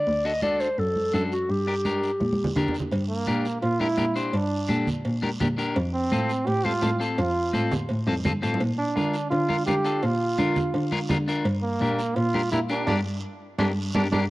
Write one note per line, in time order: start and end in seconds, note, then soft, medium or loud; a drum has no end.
0.00 0.27 D5 loud
0.07 0.64 D2 loud
0.07 long guiro medium
0.25 0.31 D4 medium
0.25 0.31 F#4 medium
0.25 0.31 A4 medium
0.25 0.43 D#5 medium
0.42 0.67 D4 medium
0.42 0.67 F#4 medium
0.42 0.68 A4 medium
0.42 0.62 D5 loud
0.42 high conga medium
0.42 short guiro medium
0.60 0.80 C5 medium
0.60 short guiro medium
0.78 0.92 F#2 medium
0.78 1.14 A4 medium
0.78 long guiro medium
0.96 high conga medium
1.13 1.42 F#2 medium
1.13 1.32 D4 medium
1.13 1.32 F#4 medium
1.13 1.33 A4 medium
1.13 1.23 A4 medium
1.13 high conga medium
1.13 short guiro medium
1.32 1.52 F#4 medium
1.32 short guiro medium
1.49 2.06 G2 medium
1.49 2.57 G4 medium
1.49 long guiro medium
1.67 1.73 D4 medium
1.67 1.74 G4 medium
1.67 1.74 A#4 medium
1.85 2.10 D4 medium
1.85 2.10 G4 medium
1.85 2.10 A#4 medium
1.85 high conga medium
1.85 short guiro medium
2.03 short guiro medium
2.20 2.34 A#2 medium
2.20 high conga medium
2.20 long guiro medium
2.33 high conga medium
2.44 low conga medium
2.56 2.85 D3 medium
2.56 2.75 D4 medium
2.56 2.75 G4 medium
2.56 2.75 A#4 medium
2.56 low conga medium
2.56 short guiro medium
2.68 low conga medium
2.74 short guiro medium
2.80 low conga medium
2.91 3.20 G2 medium
2.91 cowbell loud
2.91 long guiro medium
3.09 3.59 A#3 medium
3.27 3.55 A#2 medium
3.27 3.46 D4 medium
3.27 3.46 G4 medium
3.27 3.46 A#4 medium
3.27 high conga medium
3.27 short guiro medium
3.45 short guiro medium
3.62 3.91 A#2 loud
3.62 3.81 F4 loud
3.62 cowbell medium
3.62 long guiro medium
3.80 3.87 D4 medium
3.80 4.16 E4 loud
3.80 3.87 G4 medium
3.80 3.87 A#4 medium
3.80 high conga medium
3.97 4.26 A#2 medium
3.97 4.04 D4 medium
3.97 4.04 G4 medium
3.97 4.04 A#4 medium
3.97 high conga medium
3.97 short guiro medium
4.15 4.34 D4 medium
4.15 4.35 G4 soft
4.15 4.35 C5 medium
4.15 short guiro medium
4.33 4.62 G2 loud
4.33 4.83 D4 medium
4.33 cowbell medium
4.33 long guiro medium
4.69 4.98 A#2 medium
4.69 4.88 D4 medium
4.69 4.88 G4 medium
4.69 4.88 A4 medium
4.69 high conga medium
4.69 short guiro medium
4.87 low conga medium
4.87 short guiro medium
5.05 5.33 A#2 medium
5.05 cowbell medium
5.05 long guiro medium
5.22 5.29 D4 medium
5.22 5.29 G4 medium
5.22 5.29 A#4 medium
5.22 high conga medium
5.40 5.69 A#2 medium
5.40 5.47 D4 medium
5.40 5.47 G4 medium
5.40 5.47 A#4 medium
5.40 high conga medium
5.40 low conga medium
5.40 short guiro medium
5.58 5.76 D4 medium
5.58 5.76 G4 medium
5.58 5.76 A#4 medium
5.58 short guiro medium
5.76 6.04 F2 loud
5.76 cowbell loud
5.76 long guiro medium
5.94 6.49 C4 medium
6.12 6.40 A2 medium
6.12 6.30 C4 medium
6.12 6.31 F4 medium
6.12 6.31 A4 medium
6.12 high conga medium
6.12 short guiro medium
6.29 short guiro medium
6.47 6.76 A2 medium
6.47 6.66 G4 loud
6.47 cowbell medium
6.47 long guiro medium
6.65 6.71 C4 medium
6.65 7.00 F4 loud
6.65 6.71 F4 medium
6.65 6.71 A4 medium
6.65 high conga medium
6.82 7.11 A2 medium
6.82 6.88 C4 medium
6.82 6.89 F4 medium
6.82 6.89 A4 medium
6.82 high conga medium
6.82 low timbale medium
6.82 short guiro medium
7.00 7.19 C4 medium
7.00 7.19 F4 medium
7.00 7.19 A4 medium
7.00 short guiro medium
7.18 7.47 F2 medium
7.18 7.68 F4 medium
7.18 cowbell loud
7.18 long guiro medium
7.53 7.83 A2 medium
7.53 7.72 C4 medium
7.53 7.72 F4 medium
7.53 7.73 A4 medium
7.53 high conga medium
7.53 short guiro medium
7.71 low conga medium
7.71 high timbale medium
7.71 short guiro medium
7.89 8.04 A2 medium
7.89 cowbell medium
7.89 long guiro medium
8.07 8.23 F2 medium
8.07 8.14 C4 medium
8.07 8.14 F4 medium
8.07 8.14 A4 medium
8.07 high conga medium
8.07 low timbale medium
8.25 8.41 G2 medium
8.25 8.31 C4 medium
8.25 8.31 F4 medium
8.25 8.32 A4 medium
8.25 high conga medium
8.25 low conga medium
8.25 short guiro medium
8.42 8.59 A2 medium
8.42 8.60 C4 medium
8.42 8.61 F4 medium
8.42 8.61 A4 medium
8.42 short guiro medium
8.54 low timbale medium
8.60 8.89 A#2 loud
8.60 cowbell loud
8.60 long guiro medium
8.78 9.28 D4 medium
8.96 9.25 D3 medium
8.96 9.15 D4 medium
8.96 9.15 F4 medium
8.96 9.15 A#4 medium
8.96 high conga medium
8.96 short guiro medium
9.14 short guiro medium
9.30 9.60 D3 medium
9.30 9.64 F4 loud
9.30 cowbell medium
9.30 long guiro medium
9.49 9.55 D4 medium
9.49 9.56 F4 medium
9.49 9.56 A#4 medium
9.49 high conga medium
9.66 9.96 D3 medium
9.66 9.74 D4 medium
9.66 9.74 F4 medium
9.66 10.05 G4 loud
9.66 9.74 A#4 medium
9.66 high conga medium
9.66 low timbale medium
9.66 short guiro medium
9.85 10.04 D4 medium
9.85 10.04 F4 medium
9.85 10.04 A4 medium
9.85 short guiro medium
10.03 10.31 A#2 loud
10.03 11.10 F4 loud
10.03 cowbell loud
10.03 long guiro medium
10.38 10.67 D3 medium
10.38 10.57 D4 medium
10.38 10.57 F4 medium
10.38 10.57 A#4 medium
10.38 high conga medium
10.38 short guiro medium
10.56 low conga medium
10.56 short guiro medium
10.74 11.02 D3 medium
10.74 cowbell medium
10.74 long guiro medium
10.92 10.98 D4 medium
10.92 10.98 F4 medium
10.92 10.98 A#4 medium
10.92 high conga medium
11.10 11.38 D3 medium
11.10 11.16 D4 medium
11.10 11.16 F4 medium
11.10 11.16 A#4 medium
11.10 high conga medium
11.10 low conga medium
11.10 short guiro medium
11.28 11.46 D4 medium
11.28 11.46 F4 medium
11.28 11.46 A#4 medium
11.28 short guiro medium
11.45 11.73 G2 loud
11.45 cowbell loud
11.45 long guiro medium
11.62 12.17 A#3 loud
11.81 12.09 A#2 medium
11.81 12.00 D4 medium
11.81 12.00 G4 medium
11.81 12.00 A#4 medium
11.81 high conga medium
11.81 short guiro medium
11.99 short guiro medium
12.16 12.45 A#2 loud
12.16 12.51 F4 loud
12.16 cowbell medium
12.16 long guiro medium
12.34 12.40 D4 medium
12.34 12.41 G4 medium
12.34 12.41 A#4 medium
12.34 high conga medium
12.52 12.80 A#2 medium
12.52 12.59 D4 medium
12.52 12.60 E4 loud
12.52 12.59 G4 medium
12.52 12.59 A#4 medium
12.52 high conga medium
12.52 short guiro medium
12.69 12.87 D4 medium
12.69 12.86 D4 medium
12.69 12.87 G4 medium
12.69 12.87 A#4 medium
12.69 short guiro medium
12.87 13.01 G2 loud
12.87 12.96 D4 loud
12.87 13.00 D4 medium
12.87 13.00 G4 medium
12.87 12.99 A#4 medium
12.87 high conga loud
12.87 high timbale loud
12.87 long guiro loud
13.59 13.72 G2 loud
13.59 13.68 D4 medium
13.59 13.71 D4 loud
13.59 13.71 G4 loud
13.59 13.71 A#4 medium
13.59 high conga loud
13.59 high timbale loud
13.59 long guiro loud
13.94 14.08 G2 medium
13.94 14.03 D4 medium
13.94 14.06 D4 loud
13.94 14.07 G4 medium
13.94 14.06 A#4 medium
13.94 high conga medium
13.94 high timbale loud
13.94 long guiro loud
14.12 14.26 G2 loud
14.12 14.21 D4 medium
14.12 14.24 D4 medium
14.12 14.24 G4 medium
14.12 14.24 A#4 medium
14.12 high conga loud
14.12 high timbale loud
14.12 long guiro medium